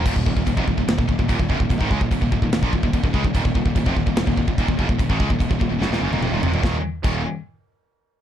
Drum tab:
CC |x---x---x---x---|x---x---x---x---|x---x---x---x---|x---x-----------|
SD |--------o-------|--------o-------|--------o-------|--------oo------|
T1 |----------------|----------------|----------------|-----------o----|
T2 |----------------|----------------|----------------|------------o---|
FT |----------------|----------------|----------------|--------------oo|
BD |oooooooo-ooooooo|oooooooo-ooooooo|oooooooo-ooooooo|ooooooo---------|

CC |----x-----------|
SD |o---------------|
T1 |----------------|
T2 |----------------|
FT |----------------|
BD |o---o-----------|